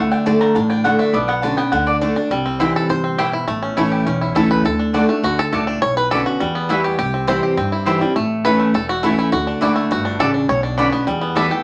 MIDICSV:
0, 0, Header, 1, 5, 480
1, 0, Start_track
1, 0, Key_signature, 2, "major"
1, 0, Tempo, 292113
1, 1873, Time_signature, 4, 2, 24, 8
1, 19112, End_track
2, 0, Start_track
2, 0, Title_t, "Mandolin"
2, 0, Program_c, 0, 25
2, 0, Note_on_c, 0, 78, 93
2, 178, Note_off_c, 0, 78, 0
2, 186, Note_on_c, 0, 79, 105
2, 421, Note_off_c, 0, 79, 0
2, 430, Note_on_c, 0, 81, 96
2, 661, Note_off_c, 0, 81, 0
2, 668, Note_on_c, 0, 82, 114
2, 896, Note_off_c, 0, 82, 0
2, 902, Note_on_c, 0, 81, 101
2, 1137, Note_off_c, 0, 81, 0
2, 1144, Note_on_c, 0, 79, 110
2, 1376, Note_off_c, 0, 79, 0
2, 1383, Note_on_c, 0, 78, 94
2, 1612, Note_off_c, 0, 78, 0
2, 1618, Note_on_c, 0, 76, 98
2, 1857, Note_on_c, 0, 74, 84
2, 1858, Note_off_c, 0, 76, 0
2, 2100, Note_off_c, 0, 74, 0
2, 2102, Note_on_c, 0, 78, 112
2, 2331, Note_off_c, 0, 78, 0
2, 2337, Note_on_c, 0, 81, 107
2, 2574, Note_off_c, 0, 81, 0
2, 2581, Note_on_c, 0, 79, 97
2, 2816, Note_off_c, 0, 79, 0
2, 2822, Note_on_c, 0, 78, 89
2, 3063, Note_off_c, 0, 78, 0
2, 3064, Note_on_c, 0, 74, 107
2, 3212, Note_off_c, 0, 74, 0
2, 4263, Note_on_c, 0, 60, 84
2, 4270, Note_on_c, 0, 64, 81
2, 4274, Note_on_c, 0, 72, 90
2, 4281, Note_on_c, 0, 79, 101
2, 4420, Note_off_c, 0, 60, 0
2, 4424, Note_off_c, 0, 64, 0
2, 4426, Note_off_c, 0, 72, 0
2, 4429, Note_off_c, 0, 79, 0
2, 5225, Note_on_c, 0, 60, 79
2, 5231, Note_on_c, 0, 64, 92
2, 5239, Note_on_c, 0, 72, 103
2, 5243, Note_on_c, 0, 79, 94
2, 5382, Note_off_c, 0, 60, 0
2, 5386, Note_off_c, 0, 64, 0
2, 5390, Note_off_c, 0, 72, 0
2, 5391, Note_off_c, 0, 79, 0
2, 6189, Note_on_c, 0, 57, 87
2, 6197, Note_on_c, 0, 64, 97
2, 6203, Note_on_c, 0, 73, 88
2, 6205, Note_on_c, 0, 81, 89
2, 6345, Note_off_c, 0, 57, 0
2, 6349, Note_off_c, 0, 64, 0
2, 6352, Note_off_c, 0, 73, 0
2, 6353, Note_off_c, 0, 81, 0
2, 7144, Note_on_c, 0, 57, 88
2, 7152, Note_on_c, 0, 64, 94
2, 7155, Note_on_c, 0, 73, 89
2, 7161, Note_on_c, 0, 81, 95
2, 7303, Note_off_c, 0, 57, 0
2, 7307, Note_off_c, 0, 64, 0
2, 7309, Note_off_c, 0, 73, 0
2, 7312, Note_off_c, 0, 81, 0
2, 8108, Note_on_c, 0, 57, 76
2, 8113, Note_on_c, 0, 66, 89
2, 8122, Note_on_c, 0, 74, 94
2, 8128, Note_on_c, 0, 81, 102
2, 8266, Note_off_c, 0, 57, 0
2, 8268, Note_off_c, 0, 66, 0
2, 8272, Note_off_c, 0, 74, 0
2, 8275, Note_off_c, 0, 81, 0
2, 9073, Note_on_c, 0, 57, 80
2, 9081, Note_on_c, 0, 66, 89
2, 9084, Note_on_c, 0, 74, 97
2, 9090, Note_on_c, 0, 81, 113
2, 9228, Note_off_c, 0, 57, 0
2, 9232, Note_off_c, 0, 66, 0
2, 9233, Note_off_c, 0, 74, 0
2, 9236, Note_off_c, 0, 81, 0
2, 10031, Note_on_c, 0, 61, 88
2, 10040, Note_on_c, 0, 66, 82
2, 10045, Note_on_c, 0, 74, 95
2, 10051, Note_on_c, 0, 83, 96
2, 10186, Note_off_c, 0, 61, 0
2, 10191, Note_off_c, 0, 66, 0
2, 10194, Note_off_c, 0, 74, 0
2, 10197, Note_off_c, 0, 83, 0
2, 10993, Note_on_c, 0, 55, 93
2, 11000, Note_on_c, 0, 64, 95
2, 11005, Note_on_c, 0, 71, 93
2, 11015, Note_on_c, 0, 76, 103
2, 11147, Note_off_c, 0, 55, 0
2, 11150, Note_off_c, 0, 64, 0
2, 11153, Note_off_c, 0, 71, 0
2, 11158, Note_off_c, 0, 76, 0
2, 11952, Note_on_c, 0, 60, 92
2, 11956, Note_on_c, 0, 64, 88
2, 11963, Note_on_c, 0, 72, 85
2, 11969, Note_on_c, 0, 79, 94
2, 12106, Note_off_c, 0, 60, 0
2, 12108, Note_off_c, 0, 64, 0
2, 12111, Note_off_c, 0, 72, 0
2, 12114, Note_off_c, 0, 79, 0
2, 12909, Note_on_c, 0, 60, 92
2, 12916, Note_on_c, 0, 64, 95
2, 12922, Note_on_c, 0, 72, 92
2, 12929, Note_on_c, 0, 79, 103
2, 13063, Note_off_c, 0, 60, 0
2, 13067, Note_off_c, 0, 64, 0
2, 13070, Note_off_c, 0, 72, 0
2, 13073, Note_off_c, 0, 79, 0
2, 13876, Note_on_c, 0, 57, 89
2, 13883, Note_on_c, 0, 64, 94
2, 13887, Note_on_c, 0, 73, 90
2, 13894, Note_on_c, 0, 81, 89
2, 14026, Note_off_c, 0, 57, 0
2, 14029, Note_off_c, 0, 64, 0
2, 14031, Note_off_c, 0, 73, 0
2, 14035, Note_off_c, 0, 81, 0
2, 14835, Note_on_c, 0, 57, 90
2, 14844, Note_on_c, 0, 64, 99
2, 14848, Note_on_c, 0, 73, 92
2, 14852, Note_on_c, 0, 81, 94
2, 14985, Note_off_c, 0, 57, 0
2, 14989, Note_off_c, 0, 64, 0
2, 14991, Note_off_c, 0, 73, 0
2, 14993, Note_off_c, 0, 81, 0
2, 15787, Note_on_c, 0, 57, 89
2, 15796, Note_on_c, 0, 66, 96
2, 15797, Note_on_c, 0, 74, 93
2, 15805, Note_on_c, 0, 81, 100
2, 15940, Note_off_c, 0, 57, 0
2, 15944, Note_off_c, 0, 66, 0
2, 15945, Note_off_c, 0, 74, 0
2, 15949, Note_off_c, 0, 81, 0
2, 16749, Note_on_c, 0, 57, 104
2, 16755, Note_on_c, 0, 66, 95
2, 16759, Note_on_c, 0, 74, 93
2, 16767, Note_on_c, 0, 81, 104
2, 16900, Note_off_c, 0, 57, 0
2, 16903, Note_off_c, 0, 66, 0
2, 16905, Note_off_c, 0, 74, 0
2, 16909, Note_off_c, 0, 81, 0
2, 17703, Note_on_c, 0, 61, 93
2, 17709, Note_on_c, 0, 66, 86
2, 17716, Note_on_c, 0, 74, 99
2, 17717, Note_on_c, 0, 83, 105
2, 17857, Note_off_c, 0, 61, 0
2, 17860, Note_off_c, 0, 66, 0
2, 17863, Note_off_c, 0, 74, 0
2, 17864, Note_off_c, 0, 83, 0
2, 18656, Note_on_c, 0, 55, 96
2, 18666, Note_on_c, 0, 64, 90
2, 18668, Note_on_c, 0, 71, 97
2, 18673, Note_on_c, 0, 76, 102
2, 18813, Note_off_c, 0, 55, 0
2, 18818, Note_off_c, 0, 64, 0
2, 18819, Note_off_c, 0, 71, 0
2, 18822, Note_off_c, 0, 76, 0
2, 19112, End_track
3, 0, Start_track
3, 0, Title_t, "Five-string banjo"
3, 0, Program_c, 1, 105
3, 0, Note_on_c, 1, 57, 83
3, 190, Note_on_c, 1, 62, 62
3, 416, Note_off_c, 1, 62, 0
3, 436, Note_on_c, 1, 62, 64
3, 623, Note_off_c, 1, 57, 0
3, 653, Note_off_c, 1, 62, 0
3, 672, Note_on_c, 1, 62, 61
3, 895, Note_off_c, 1, 62, 0
3, 915, Note_on_c, 1, 62, 59
3, 1132, Note_off_c, 1, 62, 0
3, 1152, Note_on_c, 1, 62, 61
3, 1376, Note_off_c, 1, 62, 0
3, 1395, Note_on_c, 1, 62, 59
3, 1611, Note_off_c, 1, 62, 0
3, 1630, Note_on_c, 1, 62, 68
3, 1869, Note_on_c, 1, 59, 68
3, 1872, Note_off_c, 1, 62, 0
3, 2095, Note_off_c, 1, 59, 0
3, 2115, Note_on_c, 1, 59, 61
3, 2352, Note_on_c, 1, 62, 59
3, 2570, Note_off_c, 1, 59, 0
3, 2590, Note_on_c, 1, 59, 70
3, 2804, Note_off_c, 1, 62, 0
3, 2824, Note_on_c, 1, 62, 63
3, 2833, Note_off_c, 1, 59, 0
3, 3051, Note_off_c, 1, 62, 0
3, 3071, Note_on_c, 1, 62, 63
3, 3293, Note_off_c, 1, 62, 0
3, 3313, Note_on_c, 1, 62, 57
3, 3534, Note_off_c, 1, 62, 0
3, 3554, Note_on_c, 1, 62, 66
3, 3796, Note_off_c, 1, 62, 0
3, 3797, Note_on_c, 1, 55, 78
3, 4036, Note_on_c, 1, 60, 58
3, 4272, Note_on_c, 1, 64, 64
3, 4472, Note_off_c, 1, 55, 0
3, 4531, Note_off_c, 1, 64, 0
3, 4537, Note_on_c, 1, 69, 91
3, 4710, Note_off_c, 1, 60, 0
3, 4758, Note_off_c, 1, 69, 0
3, 4765, Note_on_c, 1, 72, 103
3, 4991, Note_on_c, 1, 60, 63
3, 5233, Note_on_c, 1, 67, 78
3, 5258, Note_off_c, 1, 72, 0
3, 5462, Note_off_c, 1, 67, 0
3, 5477, Note_on_c, 1, 64, 63
3, 5669, Note_off_c, 1, 60, 0
3, 5711, Note_on_c, 1, 57, 72
3, 5719, Note_off_c, 1, 64, 0
3, 5956, Note_on_c, 1, 61, 61
3, 6193, Note_on_c, 1, 64, 58
3, 6391, Note_off_c, 1, 57, 0
3, 6438, Note_on_c, 1, 67, 55
3, 6632, Note_off_c, 1, 61, 0
3, 6679, Note_on_c, 1, 61, 61
3, 6872, Note_off_c, 1, 64, 0
3, 6924, Note_on_c, 1, 64, 59
3, 7113, Note_off_c, 1, 67, 0
3, 7158, Note_off_c, 1, 64, 0
3, 7164, Note_on_c, 1, 69, 99
3, 7355, Note_off_c, 1, 61, 0
3, 7389, Note_off_c, 1, 69, 0
3, 7407, Note_on_c, 1, 71, 105
3, 7642, Note_off_c, 1, 71, 0
3, 7648, Note_on_c, 1, 69, 87
3, 7877, Note_on_c, 1, 62, 58
3, 8093, Note_off_c, 1, 69, 0
3, 8104, Note_off_c, 1, 62, 0
3, 8123, Note_on_c, 1, 62, 59
3, 8362, Note_on_c, 1, 57, 69
3, 8613, Note_on_c, 1, 66, 93
3, 8797, Note_off_c, 1, 62, 0
3, 8857, Note_off_c, 1, 66, 0
3, 8858, Note_on_c, 1, 69, 94
3, 9035, Note_off_c, 1, 57, 0
3, 9081, Note_on_c, 1, 57, 67
3, 9312, Note_off_c, 1, 69, 0
3, 9319, Note_on_c, 1, 62, 64
3, 9555, Note_off_c, 1, 62, 0
3, 9561, Note_on_c, 1, 73, 105
3, 9563, Note_off_c, 1, 57, 0
3, 9802, Note_off_c, 1, 73, 0
3, 9809, Note_on_c, 1, 71, 93
3, 10029, Note_off_c, 1, 71, 0
3, 10043, Note_on_c, 1, 69, 98
3, 10267, Note_off_c, 1, 69, 0
3, 10286, Note_on_c, 1, 66, 80
3, 10522, Note_on_c, 1, 55, 77
3, 10732, Note_off_c, 1, 66, 0
3, 10765, Note_on_c, 1, 59, 58
3, 11010, Note_on_c, 1, 64, 60
3, 11195, Note_off_c, 1, 55, 0
3, 11245, Note_on_c, 1, 67, 76
3, 11435, Note_off_c, 1, 59, 0
3, 11460, Note_off_c, 1, 67, 0
3, 11479, Note_on_c, 1, 67, 89
3, 11729, Note_on_c, 1, 60, 60
3, 11927, Note_off_c, 1, 67, 0
3, 11958, Note_off_c, 1, 64, 0
3, 11964, Note_on_c, 1, 72, 92
3, 12208, Note_on_c, 1, 67, 61
3, 12396, Note_off_c, 1, 60, 0
3, 12446, Note_on_c, 1, 60, 67
3, 12632, Note_off_c, 1, 72, 0
3, 12689, Note_on_c, 1, 64, 58
3, 12875, Note_off_c, 1, 67, 0
3, 12926, Note_on_c, 1, 67, 58
3, 13115, Note_off_c, 1, 60, 0
3, 13166, Note_on_c, 1, 55, 65
3, 13355, Note_off_c, 1, 64, 0
3, 13398, Note_off_c, 1, 55, 0
3, 13402, Note_off_c, 1, 67, 0
3, 13405, Note_on_c, 1, 57, 77
3, 13880, Note_on_c, 1, 71, 103
3, 14074, Note_off_c, 1, 57, 0
3, 14124, Note_on_c, 1, 57, 66
3, 14325, Note_off_c, 1, 71, 0
3, 14376, Note_on_c, 1, 69, 95
3, 14605, Note_off_c, 1, 69, 0
3, 14612, Note_on_c, 1, 66, 94
3, 14792, Note_off_c, 1, 57, 0
3, 14839, Note_on_c, 1, 57, 76
3, 15051, Note_off_c, 1, 66, 0
3, 15094, Note_on_c, 1, 64, 85
3, 15315, Note_off_c, 1, 64, 0
3, 15317, Note_off_c, 1, 57, 0
3, 15321, Note_on_c, 1, 66, 89
3, 15562, Note_on_c, 1, 62, 60
3, 15805, Note_off_c, 1, 66, 0
3, 15811, Note_on_c, 1, 64, 86
3, 16031, Note_on_c, 1, 57, 76
3, 16230, Note_off_c, 1, 62, 0
3, 16289, Note_off_c, 1, 64, 0
3, 16296, Note_on_c, 1, 66, 101
3, 16514, Note_on_c, 1, 62, 62
3, 16704, Note_off_c, 1, 57, 0
3, 16756, Note_off_c, 1, 66, 0
3, 16763, Note_on_c, 1, 69, 112
3, 16972, Note_off_c, 1, 62, 0
3, 16985, Note_off_c, 1, 69, 0
3, 16992, Note_on_c, 1, 62, 63
3, 17232, Note_off_c, 1, 62, 0
3, 17240, Note_on_c, 1, 73, 104
3, 17463, Note_off_c, 1, 73, 0
3, 17469, Note_on_c, 1, 62, 56
3, 17688, Note_off_c, 1, 62, 0
3, 17707, Note_on_c, 1, 62, 61
3, 17951, Note_on_c, 1, 59, 70
3, 18183, Note_off_c, 1, 59, 0
3, 18190, Note_off_c, 1, 62, 0
3, 18190, Note_on_c, 1, 55, 74
3, 18427, Note_on_c, 1, 59, 65
3, 18678, Note_on_c, 1, 69, 94
3, 18863, Note_off_c, 1, 55, 0
3, 18914, Note_on_c, 1, 67, 63
3, 19101, Note_off_c, 1, 59, 0
3, 19112, Note_off_c, 1, 67, 0
3, 19112, Note_off_c, 1, 69, 0
3, 19112, End_track
4, 0, Start_track
4, 0, Title_t, "Steel-string acoustic guitar"
4, 0, Program_c, 2, 25
4, 0, Note_on_c, 2, 50, 84
4, 405, Note_off_c, 2, 50, 0
4, 425, Note_on_c, 2, 50, 91
4, 433, Note_on_c, 2, 57, 100
4, 440, Note_on_c, 2, 62, 88
4, 448, Note_on_c, 2, 66, 94
4, 885, Note_off_c, 2, 50, 0
4, 889, Note_off_c, 2, 57, 0
4, 892, Note_off_c, 2, 62, 0
4, 897, Note_off_c, 2, 66, 0
4, 916, Note_on_c, 2, 45, 87
4, 1390, Note_on_c, 2, 50, 87
4, 1398, Note_on_c, 2, 57, 83
4, 1408, Note_on_c, 2, 62, 93
4, 1415, Note_on_c, 2, 66, 102
4, 1828, Note_off_c, 2, 45, 0
4, 1849, Note_off_c, 2, 50, 0
4, 1853, Note_off_c, 2, 57, 0
4, 1857, Note_off_c, 2, 62, 0
4, 1861, Note_off_c, 2, 66, 0
4, 1876, Note_on_c, 2, 47, 83
4, 2352, Note_on_c, 2, 50, 92
4, 2363, Note_on_c, 2, 59, 91
4, 2371, Note_on_c, 2, 61, 96
4, 2379, Note_on_c, 2, 66, 93
4, 2570, Note_off_c, 2, 66, 0
4, 2585, Note_off_c, 2, 50, 0
4, 2590, Note_on_c, 2, 66, 61
4, 2591, Note_off_c, 2, 59, 0
4, 2595, Note_off_c, 2, 61, 0
4, 2614, Note_on_c, 2, 61, 53
4, 2789, Note_off_c, 2, 47, 0
4, 2823, Note_off_c, 2, 66, 0
4, 2835, Note_off_c, 2, 61, 0
4, 2836, Note_on_c, 2, 50, 97
4, 3288, Note_off_c, 2, 50, 0
4, 3308, Note_on_c, 2, 50, 88
4, 3317, Note_on_c, 2, 57, 93
4, 3322, Note_on_c, 2, 62, 83
4, 3332, Note_on_c, 2, 66, 102
4, 3527, Note_off_c, 2, 66, 0
4, 3544, Note_off_c, 2, 50, 0
4, 3547, Note_on_c, 2, 66, 60
4, 3549, Note_off_c, 2, 57, 0
4, 3551, Note_off_c, 2, 62, 0
4, 3572, Note_on_c, 2, 62, 59
4, 3783, Note_off_c, 2, 66, 0
4, 3795, Note_off_c, 2, 62, 0
4, 3796, Note_on_c, 2, 48, 78
4, 4271, Note_on_c, 2, 52, 85
4, 4280, Note_on_c, 2, 55, 78
4, 4285, Note_on_c, 2, 60, 100
4, 4296, Note_on_c, 2, 64, 93
4, 4711, Note_off_c, 2, 48, 0
4, 4732, Note_off_c, 2, 52, 0
4, 4737, Note_off_c, 2, 55, 0
4, 4739, Note_off_c, 2, 60, 0
4, 4745, Note_off_c, 2, 64, 0
4, 4755, Note_on_c, 2, 48, 79
4, 5215, Note_off_c, 2, 48, 0
4, 5234, Note_on_c, 2, 47, 88
4, 5695, Note_off_c, 2, 47, 0
4, 5718, Note_on_c, 2, 45, 79
4, 6193, Note_on_c, 2, 52, 82
4, 6202, Note_on_c, 2, 57, 93
4, 6214, Note_on_c, 2, 61, 86
4, 6215, Note_on_c, 2, 64, 96
4, 6634, Note_off_c, 2, 45, 0
4, 6655, Note_off_c, 2, 52, 0
4, 6659, Note_off_c, 2, 57, 0
4, 6665, Note_off_c, 2, 61, 0
4, 6666, Note_off_c, 2, 64, 0
4, 6684, Note_on_c, 2, 40, 86
4, 7152, Note_on_c, 2, 52, 88
4, 7163, Note_on_c, 2, 57, 90
4, 7170, Note_on_c, 2, 61, 88
4, 7178, Note_on_c, 2, 64, 92
4, 7597, Note_off_c, 2, 40, 0
4, 7615, Note_off_c, 2, 52, 0
4, 7620, Note_off_c, 2, 57, 0
4, 7624, Note_off_c, 2, 61, 0
4, 7628, Note_off_c, 2, 64, 0
4, 7638, Note_on_c, 2, 50, 74
4, 8095, Note_off_c, 2, 50, 0
4, 8114, Note_on_c, 2, 50, 93
4, 8123, Note_on_c, 2, 57, 82
4, 8129, Note_on_c, 2, 62, 93
4, 8139, Note_on_c, 2, 66, 96
4, 8339, Note_off_c, 2, 66, 0
4, 8351, Note_off_c, 2, 50, 0
4, 8355, Note_off_c, 2, 57, 0
4, 8358, Note_off_c, 2, 62, 0
4, 8359, Note_on_c, 2, 66, 58
4, 8384, Note_on_c, 2, 62, 48
4, 8592, Note_off_c, 2, 66, 0
4, 8601, Note_on_c, 2, 50, 87
4, 8605, Note_off_c, 2, 62, 0
4, 9059, Note_off_c, 2, 50, 0
4, 9083, Note_on_c, 2, 45, 90
4, 9540, Note_off_c, 2, 45, 0
4, 9563, Note_on_c, 2, 47, 78
4, 10041, Note_on_c, 2, 50, 76
4, 10049, Note_on_c, 2, 59, 86
4, 10059, Note_on_c, 2, 61, 94
4, 10067, Note_on_c, 2, 66, 99
4, 10475, Note_off_c, 2, 47, 0
4, 10498, Note_off_c, 2, 50, 0
4, 10503, Note_off_c, 2, 59, 0
4, 10507, Note_off_c, 2, 61, 0
4, 10511, Note_off_c, 2, 66, 0
4, 10523, Note_on_c, 2, 40, 86
4, 10994, Note_on_c, 2, 52, 88
4, 11003, Note_on_c, 2, 55, 88
4, 11010, Note_on_c, 2, 59, 104
4, 11017, Note_on_c, 2, 66, 101
4, 11434, Note_off_c, 2, 40, 0
4, 11454, Note_off_c, 2, 52, 0
4, 11459, Note_off_c, 2, 55, 0
4, 11462, Note_off_c, 2, 59, 0
4, 11466, Note_off_c, 2, 66, 0
4, 11479, Note_on_c, 2, 48, 72
4, 11953, Note_on_c, 2, 52, 90
4, 11965, Note_on_c, 2, 55, 93
4, 11972, Note_on_c, 2, 60, 95
4, 11979, Note_on_c, 2, 64, 92
4, 12392, Note_off_c, 2, 48, 0
4, 12413, Note_off_c, 2, 52, 0
4, 12419, Note_off_c, 2, 55, 0
4, 12422, Note_off_c, 2, 60, 0
4, 12426, Note_off_c, 2, 64, 0
4, 12444, Note_on_c, 2, 43, 82
4, 12919, Note_on_c, 2, 52, 85
4, 12929, Note_on_c, 2, 55, 79
4, 12939, Note_on_c, 2, 60, 86
4, 12945, Note_on_c, 2, 64, 96
4, 13141, Note_off_c, 2, 64, 0
4, 13151, Note_off_c, 2, 52, 0
4, 13155, Note_off_c, 2, 55, 0
4, 13160, Note_off_c, 2, 60, 0
4, 13161, Note_on_c, 2, 64, 52
4, 13186, Note_on_c, 2, 60, 54
4, 13353, Note_off_c, 2, 43, 0
4, 13390, Note_off_c, 2, 64, 0
4, 13403, Note_off_c, 2, 60, 0
4, 13408, Note_on_c, 2, 45, 85
4, 13881, Note_on_c, 2, 52, 85
4, 13893, Note_on_c, 2, 57, 90
4, 13898, Note_on_c, 2, 61, 90
4, 13905, Note_on_c, 2, 64, 92
4, 14314, Note_off_c, 2, 45, 0
4, 14335, Note_off_c, 2, 52, 0
4, 14341, Note_off_c, 2, 57, 0
4, 14344, Note_off_c, 2, 61, 0
4, 14347, Note_off_c, 2, 64, 0
4, 14366, Note_on_c, 2, 40, 88
4, 14840, Note_on_c, 2, 52, 89
4, 14850, Note_on_c, 2, 57, 89
4, 14858, Note_on_c, 2, 61, 99
4, 14863, Note_on_c, 2, 64, 94
4, 15273, Note_off_c, 2, 40, 0
4, 15294, Note_off_c, 2, 52, 0
4, 15299, Note_off_c, 2, 57, 0
4, 15303, Note_off_c, 2, 61, 0
4, 15305, Note_off_c, 2, 64, 0
4, 15316, Note_on_c, 2, 50, 78
4, 15769, Note_off_c, 2, 50, 0
4, 15789, Note_on_c, 2, 50, 84
4, 15802, Note_on_c, 2, 57, 84
4, 15811, Note_on_c, 2, 62, 98
4, 15816, Note_on_c, 2, 66, 99
4, 16248, Note_off_c, 2, 50, 0
4, 16254, Note_off_c, 2, 57, 0
4, 16258, Note_off_c, 2, 62, 0
4, 16261, Note_off_c, 2, 66, 0
4, 16280, Note_on_c, 2, 43, 90
4, 16733, Note_off_c, 2, 43, 0
4, 16760, Note_on_c, 2, 49, 94
4, 17213, Note_off_c, 2, 49, 0
4, 17238, Note_on_c, 2, 47, 87
4, 17718, Note_on_c, 2, 50, 90
4, 17729, Note_on_c, 2, 59, 91
4, 17731, Note_on_c, 2, 61, 88
4, 17741, Note_on_c, 2, 66, 93
4, 17935, Note_off_c, 2, 66, 0
4, 17947, Note_off_c, 2, 50, 0
4, 17952, Note_off_c, 2, 59, 0
4, 17953, Note_off_c, 2, 61, 0
4, 17954, Note_on_c, 2, 66, 61
4, 17984, Note_on_c, 2, 61, 55
4, 18147, Note_off_c, 2, 47, 0
4, 18183, Note_off_c, 2, 66, 0
4, 18198, Note_off_c, 2, 61, 0
4, 18199, Note_on_c, 2, 40, 95
4, 18661, Note_on_c, 2, 52, 83
4, 18669, Note_on_c, 2, 55, 89
4, 18675, Note_on_c, 2, 59, 97
4, 18682, Note_on_c, 2, 66, 100
4, 18887, Note_off_c, 2, 66, 0
4, 18897, Note_off_c, 2, 52, 0
4, 18902, Note_off_c, 2, 55, 0
4, 18905, Note_off_c, 2, 59, 0
4, 18907, Note_on_c, 2, 66, 57
4, 18933, Note_on_c, 2, 59, 45
4, 19107, Note_off_c, 2, 40, 0
4, 19112, Note_off_c, 2, 59, 0
4, 19112, Note_off_c, 2, 66, 0
4, 19112, End_track
5, 0, Start_track
5, 0, Title_t, "Upright bass"
5, 0, Program_c, 3, 32
5, 0, Note_on_c, 3, 38, 94
5, 589, Note_off_c, 3, 38, 0
5, 900, Note_on_c, 3, 33, 93
5, 1545, Note_off_c, 3, 33, 0
5, 1864, Note_on_c, 3, 35, 93
5, 2509, Note_off_c, 3, 35, 0
5, 2824, Note_on_c, 3, 38, 93
5, 3469, Note_off_c, 3, 38, 0
5, 3785, Note_on_c, 3, 36, 88
5, 4431, Note_off_c, 3, 36, 0
5, 4755, Note_on_c, 3, 31, 82
5, 5398, Note_off_c, 3, 31, 0
5, 5715, Note_on_c, 3, 33, 92
5, 6038, Note_off_c, 3, 33, 0
5, 6198, Note_on_c, 3, 33, 82
5, 6609, Note_off_c, 3, 33, 0
5, 6670, Note_on_c, 3, 35, 88
5, 7084, Note_off_c, 3, 35, 0
5, 7149, Note_on_c, 3, 37, 87
5, 7564, Note_off_c, 3, 37, 0
5, 7633, Note_on_c, 3, 38, 92
5, 8277, Note_off_c, 3, 38, 0
5, 8589, Note_on_c, 3, 38, 86
5, 9004, Note_off_c, 3, 38, 0
5, 9077, Note_on_c, 3, 37, 89
5, 9488, Note_off_c, 3, 37, 0
5, 9561, Note_on_c, 3, 35, 94
5, 10202, Note_off_c, 3, 35, 0
5, 10521, Note_on_c, 3, 40, 97
5, 11161, Note_off_c, 3, 40, 0
5, 11480, Note_on_c, 3, 36, 96
5, 12120, Note_off_c, 3, 36, 0
5, 12437, Note_on_c, 3, 43, 90
5, 13077, Note_off_c, 3, 43, 0
5, 13395, Note_on_c, 3, 33, 88
5, 14035, Note_off_c, 3, 33, 0
5, 14356, Note_on_c, 3, 28, 85
5, 14996, Note_off_c, 3, 28, 0
5, 15313, Note_on_c, 3, 38, 93
5, 15634, Note_off_c, 3, 38, 0
5, 15795, Note_on_c, 3, 30, 86
5, 16203, Note_off_c, 3, 30, 0
5, 16271, Note_on_c, 3, 31, 85
5, 16680, Note_off_c, 3, 31, 0
5, 16756, Note_on_c, 3, 33, 90
5, 17163, Note_off_c, 3, 33, 0
5, 17229, Note_on_c, 3, 35, 99
5, 17870, Note_off_c, 3, 35, 0
5, 18189, Note_on_c, 3, 40, 91
5, 18830, Note_off_c, 3, 40, 0
5, 19112, End_track
0, 0, End_of_file